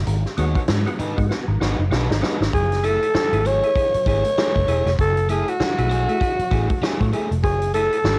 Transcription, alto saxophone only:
2.54 2.87 G#4 medium
2.85 3.48 A4 loud
3.46 4.07 C#5 loud
4.09 4.96 C#5 loud
5.01 5.28 A4 medium
5.31 5.50 G#4 medium
5.49 7.14 F#4 medium
7.43 7.72 G#4 medium
7.74 8.19 A4 loud

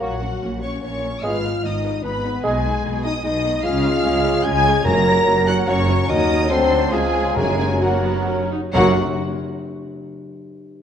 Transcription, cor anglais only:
0.02 0.16 F#4 soft
1.24 1.38 G#4 medium
2.44 2.58 G#4 medium
3.65 4.82 G#4 medium
4.85 6.06 A#4 medium
6.09 6.47 A#4 medium
6.49 6.91 A4 medium
6.92 7.37 G#4 medium
7.35 7.81 A#4 medium
7.81 8.49 A#4 medium
8.73 8.93 A#4 medium

